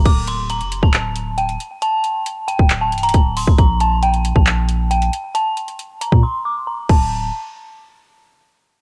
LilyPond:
<<
  \new Staff \with { instrumentName = "Synth bell" } { \time 4/4 \key bes \lydian \tempo 4 = 136 d'''8 c'''8 bes''8. a''4~ a''16 g''4 | a''4 r8 g''8. a''8 bes''8. c'''8 | bes''8 a''8 g''8. a''4~ a''16 g''4 | a''4 r8 bes''8 c'''8 d'''8 bes''8 a''8 |
r1 | }
  \new Staff \with { instrumentName = "808-style bass" } { \clef bass \time 4/4 \key bes \lydian d,,4~ d,,16 f,,8 d,,4.~ d,,16 r8 | r4. r16 d,,8. c,,8 d,,8. d,,16 | bes,,4.~ bes,,16 bes,,4.~ bes,,16 r8 | r4. r16 bes,16 r4. d,,8~ |
d,,8 r2. r8 | }
  \new DrumStaff \with { instrumentName = "Drums" } \drummode { \time 4/4 <cymc hh bd>8 hh8 hh16 hh16 hh16 bd16 <hc hh>8 hh8 hh16 hh16 hh8 | hh8 hh8 hh8 hh16 bd16 <hc hh>8 hh32 hh32 hh32 hh32 <hh bd>8 hho16 bd16 | <hh bd>8 hh8 hh16 hh16 hh16 bd16 <hc hh>8 hh8 hh16 hh16 hh8 | hh8 hh16 hh16 hh8 hh16 bd16 r4 r8 <cymc bd>8 |
r4 r4 r4 r4 | }
>>